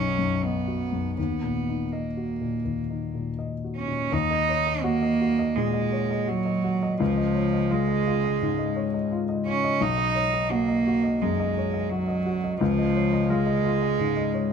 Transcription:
Already playing: grand piano B1 F#2 D#4 F#4 D#5, cello C#4
0.18 grand piano F#2
0.44 cello B3, grand piano D#5
0.68 grand piano F#4
0.92 grand piano F#2
1.17 grand piano D#2, cello B3
1.43 grand piano A#2
1.68 grand piano D#4
1.92 cello A#3, grand piano D#5
2.17 grand piano F#4
2.41 grand piano A#2
2.65 grand piano D#2
2.90 grand piano D#4
3.15 grand piano A#2
3.39 grand piano D#5
3.64 grand piano F#4
3.76 cello C#4
3.88 grand piano A#2
4.12 grand piano D#2, cello D#4
4.31 grand piano D#5
4.49 grand piano C#5
4.84 cello A#3, grand piano F#4
5.02 grand piano D#5
5.21 grand piano F#4
5.39 grand piano D#5
5.55 grand piano A#2, cello G#3
5.74 grand piano D#5
5.92 grand piano C#5
6.11 grand piano D#5
6.27 cello F#3, grand piano F#4
6.45 grand piano D#5
6.64 grand piano F#4
6.83 grand piano D#5
7.00 grand piano C#2, cello F3
7.17 grand piano D#5
7.35 grand piano C#5
7.53 grand piano D#5
7.71 cello G#3, grand piano F4
7.88 grand piano D#5
8.07 grand piano F4
8.24 grand piano D#5
8.41 grand piano G#2
8.59 grand piano D#5
8.76 grand piano C#5
8.94 grand piano D#5
9.12 grand piano F4
9.29 grand piano D#5
9.46 cello C#4, grand piano F4
9.64 grand piano D#5
9.81 grand piano B1, cello D#4
9.98 grand piano D#5
10.15 grand piano C#5
10.34 grand piano D#5
10.50 cello A#3, grand piano F#4
10.68 grand piano D#5
10.87 grand piano F#4
11.04 grand piano D#5
11.22 grand piano F#2, cello G#3
11.40 grand piano D#5
11.58 grand piano C#5
11.74 grand piano D#5
11.90 cello F#3, grand piano F#4
12.08 grand piano D#5
12.26 grand piano F#4
12.44 grand piano D#5
12.60 grand piano C#2, cello F3
12.79 grand piano D#5
12.96 grand piano C#5
13.13 grand piano D#5
13.30 cello G#3, grand piano F4
13.46 grand piano D#5
13.65 grand piano F4
13.82 grand piano D#5
13.99 grand piano G#2
14.17 grand piano D#5
14.34 grand piano C#5

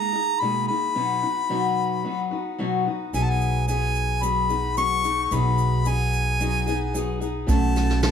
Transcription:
Already playing: steel-string acoustic guitar G#3 A#3 D#4 G#4, harmonica A#5
0.13 steel-string acoustic guitar A#3 D#4 G#4
0.40 steel-string acoustic guitar B2 G#3 A#3 D#4 G#4, harmonica B5
0.68 steel-string acoustic guitar A#3 D#4 G#4, harmonica B5
0.95 steel-string acoustic guitar B2 F#3 B3 D#4 F#4
1.22 steel-string acoustic guitar B3 D#4 F#4
1.49 steel-string acoustic guitar B2 F#3 B3 D#4 F#4
2.04 steel-string acoustic guitar F#3 B3 D#4 F#4
2.31 steel-string acoustic guitar B3 D#4 F#4
2.59 steel-string acoustic guitar B2 F#3 B3 D#4 F#4
2.85 steel-string acoustic guitar B3 D#4 F#4
3.13 upright bass B1, steel-string acoustic guitar B2 F#3 B3 D#4 G#4, harmonica G#5, shaker
3.23 harmonica A5
3.30 harmonica G#5
3.41 shaker
3.68 steel-string acoustic guitar F#3 B3 D#4 G#4, harmonica G#5, shaker
3.95 shaker
4.22 steel-string acoustic guitar F#3 B3 D#4 G#4, harmonica B5, shaker
4.49 steel-string acoustic guitar B3 D#4 G#4, shaker
4.77 steel-string acoustic guitar F#3 B3 D#4 G#4, harmonica C#6, shaker
5.04 steel-string acoustic guitar B3 D#4 G#4, shaker
5.25 harmonica C#6
5.31 upright bass B1, steel-string acoustic guitar B2 F#3 B3 D#4 G#4, harmonica B5, shaker
5.58 shaker
5.85 steel-string acoustic guitar F#3 B3 D#4 G#4, harmonica G#5, shaker
6.13 shaker
6.40 steel-string acoustic guitar F#3 B3 D#4 G#4, shaker
6.66 steel-string acoustic guitar B3 D#4 G#4, shaker
6.94 steel-string acoustic guitar F#3 B3 D#4 G#4, shaker
7.20 steel-string acoustic guitar B3 D#4 G#4, shaker
7.47 upright bass B1, steel-string acoustic guitar B2 F#3 A3 C#4 F#4, harmonica A5, kick, snare, shaker
7.76 snare, shaker
7.90 snare
8.02 steel-string acoustic guitar F#3 A3 C#4 F#4, harmonica A5, snare, shaker

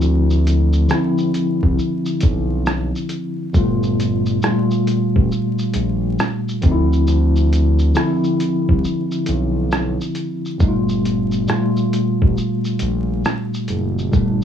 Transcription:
Already playing: tine electric piano D3 F3 C4 E4
0.01 analog synth bass D2, shaker
0.30 shaker
0.47 closed hi-hat, shaker
0.73 shaker
0.88 tine electric piano D3 F3 C4 E4, cross-stick, shaker
1.18 shaker
1.34 closed hi-hat, shaker
1.63 analog synth bass C2, kick
1.79 shaker
2.06 shaker
2.21 analog synth bass B1, kick, closed hi-hat, shaker
2.66 cross-stick, shaker
2.95 shaker
3.09 closed hi-hat, shaker
3.53 analog synth bass G1, tine electric piano A#2 G3 A3 F4, kick, shaker
3.83 shaker
4.00 closed hi-hat, shaker
4.26 shaker
4.42 tine electric piano A#2 G3 A3, cross-stick, shaker
4.47 tine electric piano F4
4.71 shaker
4.87 closed hi-hat, shaker
5.16 analog synth bass A1, kick
5.32 shaker
5.59 shaker
5.74 analog synth bass A#1, closed hi-hat, shaker
6.19 cross-stick, shaker
6.48 shaker
6.62 analog synth bass D2, tine electric piano D3 F3 C4 D#4, kick, closed hi-hat, shaker
6.72 tine electric piano E4
6.93 shaker
7.07 analog synth bass D2, shaker
7.36 shaker
7.53 closed hi-hat, shaker
7.79 shaker
7.94 tine electric piano D3 F3 C4 E4, cross-stick, shaker
8.24 shaker
8.40 closed hi-hat, shaker
8.69 analog synth bass C2, kick
8.84 shaker
9.11 shaker
9.26 analog synth bass B1, closed hi-hat, shaker
9.71 cross-stick, shaker
10.01 shaker
10.15 closed hi-hat, shaker
10.45 shaker
10.58 analog synth bass G1, tine electric piano A#2 G3 A3 D#4, kick, shaker
10.68 tine electric piano F4
10.89 shaker
11.05 closed hi-hat, shaker
11.31 shaker
11.46 tine electric piano A#2 G3 A3 F4, cross-stick, shaker
11.76 shaker
11.93 closed hi-hat, shaker
12.22 analog synth bass A1, kick
12.37 shaker
12.64 shaker
12.79 analog synth bass A#1, closed hi-hat, shaker
13.25 cross-stick, shaker
13.54 shaker
13.68 analog synth bass F#1, closed hi-hat, shaker
13.98 shaker
14.11 analog synth bass G1, tine electric piano A#2 G3 A3 D4, kick, shaker

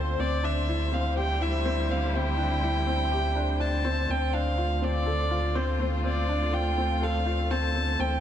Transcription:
Already playing: sub bass D2, string section D3 A3 F4 C5, felt piano C4 D4 F4 A4, violin C5
0.19 sub bass D2, felt piano C4, violin D5
0.43 felt piano D4, violin E5
0.64 string section G3, felt piano E4
0.92 felt piano C4, violin F5
1.11 string section E4
1.17 felt piano G4, violin G5
1.41 felt piano E4, violin E5
1.65 felt piano C4
1.89 felt piano C4, violin F5
2.14 felt piano C4, violin G5
2.38 felt piano D4
2.63 felt piano E4
2.87 felt piano C4
3.12 felt piano G4
3.36 felt piano D4
3.60 felt piano D4, violin A5
3.85 felt piano C4
4.09 sub bass D2, felt piano C4, violin G5
4.34 felt piano D4, violin F5
4.58 felt piano F4
4.66 string section A3
4.82 felt piano C4, violin D5
4.91 string section F4
5.06 felt piano A4
5.31 felt piano F4
5.55 felt piano C4, violin C5
5.80 felt piano C4
6.04 felt piano C4, violin D5
6.29 felt piano D4
6.53 felt piano F4, violin G5
6.78 felt piano C4
7.02 felt piano A4, violin F5
7.26 felt piano F4
7.51 felt piano C4, violin A5
7.75 felt piano C4
7.99 sub bass D2, string section E3, felt piano C4, violin G5

